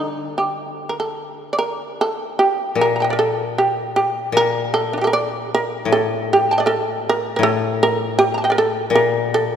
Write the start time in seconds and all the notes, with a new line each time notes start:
Already playing: D3 G3 D4 D#4
0.38 G4
0.89 A#4
1.00 A4
1.53 D5
1.59 A#4
2.01 A4
2.39 G4
2.75 A#2
2.81 A#4
2.96 A#5
3.00 G5 A5
3.04 D#5
3.10 A#4 D5
3.19 A4
3.58 G4
3.96 G4
4.32 A#2
4.37 A#4
4.74 A4
4.93 D4
4.98 D#4 G4
5.04 A4 A#4
5.13 D5
5.55 A#4
5.85 A2
5.92 A4
6.33 G4
6.51 G5 A5
6.58 D5 D#5
6.66 A4 A#4
7.09 A#4
7.36 A2 A#4
7.43 A4
7.83 A#4
8.19 G4
8.34 A5 A#5
8.44 D#5 G5
8.50 A#4 D5
8.58 A4
8.90 A#2
8.95 A#4
9.34 A4